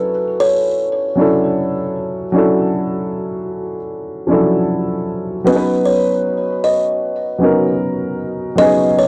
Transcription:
0.00 0.64 F#3 medium
0.00 0.65 C#4 medium
0.00 0.66 D4 medium
0.00 0.66 E4 medium
0.00 0.70 A4 medium
0.00 0.36 B4 medium
0.40 1.52 C#5 medium
1.15 2.23 F#3 medium
1.15 2.24 C#4 medium
1.15 2.25 D4 medium
1.20 2.26 E4 medium
1.20 2.26 A4 medium
2.32 3.76 F#3 medium
2.32 3.77 C#4 medium
2.32 3.77 D4 medium
2.32 3.78 E4 medium
2.38 3.79 A4 medium
4.27 4.35 F3 medium
4.27 5.36 C#4 medium
4.27 5.36 D4 medium
4.27 5.37 E4 medium
4.32 5.38 F#3 medium
4.32 5.38 A4 medium
5.44 6.88 F#3 medium
5.44 6.88 B3 medium
5.44 6.89 C#4 medium
5.44 6.90 D#4 medium
5.44 5.81 B4 medium
5.50 5.55 G#4 medium
5.56 6.94 B4 medium
5.86 6.59 C#5 medium
6.64 7.76 D#5 medium
7.39 8.47 F#3 medium
7.39 8.47 B3 medium
7.39 8.48 C#4 medium
7.43 8.49 D#4 medium
7.43 8.49 A#4 medium
8.56 9.08 F#3 medium
8.56 9.08 B3 medium
8.56 9.08 C#4 medium
8.56 8.93 D#5 loud
8.60 9.08 D#4 medium
8.60 9.08 G#4 medium
8.99 9.08 C#5 medium

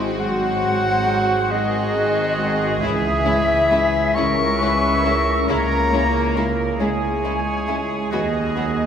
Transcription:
0.00 2.78 G#1 medium
0.00 0.20 G#3 loud
0.00 0.23 G#3 medium
0.00 2.81 G#3 medium
0.00 0.23 C4 medium
0.00 2.78 C4 medium
0.00 0.21 E4 medium
0.00 0.23 F#4 medium
0.00 2.78 F#4 medium
0.19 0.63 G#2 medium
0.19 1.49 F#3 loud
0.19 1.49 F#4 medium
0.19 1.54 C5 loud
0.19 1.53 F#5 loud
0.19 1.52 F#5 loud
0.63 1.03 G#3 medium
0.63 1.04 C4 medium
0.63 1.04 F#4 medium
1.07 1.47 G#3 medium
1.07 1.47 C4 medium
1.07 1.47 F#4 medium
1.51 2.82 D#3 loud
1.51 1.91 G#3 medium
1.51 1.91 C4 medium
1.51 1.91 F#4 medium
1.51 2.82 F#4 loud
1.51 4.16 G#4 medium
1.51 2.81 D#5 medium
1.51 2.81 D#5 loud
1.95 2.34 G#3 medium
1.95 2.35 C4 medium
1.95 2.34 F#4 medium
2.38 2.78 G#3 medium
2.38 2.78 C4 medium
2.38 2.78 F#4 medium
2.81 4.00 C#2 loud
2.81 3.25 C#2 medium
2.81 4.16 E3 loud
2.81 2.90 G#3 medium
2.81 2.89 C#4 medium
2.81 2.90 E4 medium
2.81 4.16 G#4 loud
2.81 4.17 E5 medium
2.81 4.17 E5 loud
3.24 3.68 G#3 medium
3.24 3.35 G#3 medium
3.24 3.32 C#4 medium
3.24 3.68 C#4 medium
3.24 3.34 E4 medium
3.24 3.68 E4 medium
3.70 4.12 G#3 medium
3.70 3.79 G#3 medium
3.70 3.78 C#4 medium
3.70 4.12 C#4 medium
3.70 4.13 E4 medium
3.70 3.80 E4 medium
4.15 5.33 C#2 medium
4.15 4.56 G#3 medium
4.15 4.24 G#3 medium
4.15 4.23 C#4 medium
4.15 5.30 C#4 loud
4.15 4.57 C#4 medium
4.15 4.57 E4 medium
4.15 4.25 E4 medium
4.15 4.60 A#4 medium
4.15 5.52 E5 loud
4.15 5.48 C#6 loud
4.15 5.49 C#6 loud
4.60 5.01 G#3 medium
4.60 4.69 G#3 medium
4.60 4.69 C#4 medium
4.60 5.01 C#4 medium
4.60 4.70 E4 medium
4.60 5.01 E4 medium
4.60 5.04 B4 medium
5.03 5.44 G#3 medium
5.03 5.13 G#3 medium
5.03 5.11 C#4 medium
5.03 5.45 C#4 medium
5.03 5.45 E4 medium
5.03 5.13 E4 medium
5.03 6.80 A#4 medium
5.47 6.65 C#2 loud
5.47 5.91 C#2 medium
5.47 5.57 G#3 medium
5.47 6.77 A#3 loud
5.47 5.55 C#4 medium
5.47 5.57 E4 medium
5.47 6.53 C#5 loud
5.47 6.52 A#5 loud
5.47 6.50 A#5 loud
5.92 6.00 G#3 medium
5.92 6.32 G#3 medium
5.92 6.00 C#4 medium
5.92 6.33 C#4 medium
5.92 6.33 E4 medium
5.92 6.02 E4 medium
6.35 6.44 G#3 medium
6.35 6.76 G#3 medium
6.35 6.43 C#4 medium
6.35 6.77 C#4 medium
6.35 6.45 E4 medium
6.35 6.77 E4 medium
6.79 7.97 C#2 medium
6.79 6.88 G#3 medium
6.79 7.20 G#3 medium
6.79 8.13 G#3 medium
6.79 6.87 C#4 medium
6.79 7.21 C#4 medium
6.79 6.88 E4 medium
6.79 7.21 E4 medium
6.79 8.86 G#4 medium
6.79 8.12 C#5 loud
6.79 8.08 G#5 medium
6.79 8.09 G#5 medium
7.23 7.33 G#3 medium
7.23 7.65 G#3 medium
7.23 7.31 C#4 medium
7.23 7.65 C#4 soft
7.23 7.33 E4 medium
7.23 7.65 E4 medium
7.67 8.09 G#3 medium
7.67 7.78 G#3 medium
7.67 7.75 C#4 medium
7.67 8.09 C#4 medium
7.67 7.76 E4 medium
7.67 8.09 E4 medium
8.11 8.56 D#2 medium
8.11 8.86 D#2 medium
8.11 8.86 D#3 medium
8.11 8.21 F#3 medium
8.11 8.20 B3 medium
8.11 8.86 F#4 medium
8.11 8.20 F#4 medium
8.11 8.86 D#5 loud
8.11 8.86 D#5 medium
8.56 8.86 F#3 soft
8.56 8.67 F#3 medium
8.56 8.64 B3 medium
8.56 8.86 B3 medium
8.56 8.65 F#4 medium
8.56 8.86 F#4 medium

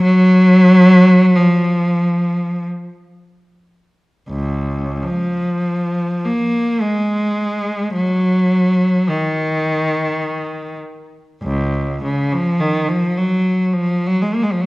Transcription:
0.03 1.32 F#3 loud
1.35 2.66 F3 medium
4.29 5.01 C#2 medium
5.03 6.24 F3 medium
6.24 6.81 A#3 medium
6.81 7.95 G#3 medium
7.94 9.07 F#3 medium
9.09 10.77 D#3 medium
11.42 12.03 C#2 medium
12.03 12.31 C#3 medium
12.32 12.60 F3 medium
12.60 12.88 D#3 medium
12.88 13.17 F3 medium
13.17 13.73 F#3 medium
13.73 14.07 F3 medium
14.06 14.22 F#3 medium
14.21 14.33 G#3 medium
14.34 14.43 A#3 medium
14.43 14.51 G#3 medium
14.52 14.61 F3 medium
14.61 14.66 F#3 medium

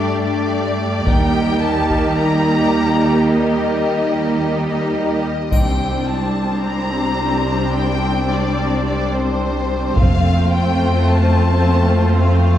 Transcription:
0.00 1.02 G2 soft
0.00 1.03 G3 soft
0.00 1.02 A3 soft
0.00 1.03 A3 soft
0.00 1.02 D4 soft
0.00 1.02 G4 soft
0.00 0.22 D5 medium
0.23 1.05 D5 medium
1.06 1.59 D#2 soft
1.06 5.32 D#2 soft
1.06 5.20 G3 soft
1.06 5.28 G3 soft
1.06 5.28 A#3 soft
1.06 5.28 D#4 soft
1.06 5.20 D#4 medium
1.06 5.28 G4 medium
1.06 1.63 G5 medium
1.06 taiko soft
1.63 2.18 A5 medium
1.90 taiko soft
2.19 3.27 A#5 medium
3.31 4.66 D#5 medium
4.69 5.50 D#5 soft
5.51 9.94 C2 soft
5.51 6.04 C2 soft
5.51 9.94 G3 soft
5.51 9.94 C4 soft
5.51 9.93 D4 soft
5.51 9.94 D4 soft
5.51 9.93 C5 soft
5.51 6.08 G5 soft
5.51 taiko soft
5.51 triangle soft
6.07 6.63 A5 soft
6.63 7.73 A#5 medium
7.74 8.29 G5 medium
8.30 8.85 D5 medium
8.86 9.14 D5 medium
9.13 9.97 C5 medium
9.97 10.50 F1 soft
9.97 12.58 F2 medium
9.97 12.58 A3 medium
9.97 12.58 A3 soft
9.97 12.58 C4 medium
9.97 12.58 C4 soft
9.97 12.58 F4 medium
9.97 12.58 C5 soft
9.97 10.53 F5 medium
9.97 taiko medium
10.53 11.08 G5 medium
11.09 12.20 A5 medium
12.21 12.58 F5 soft

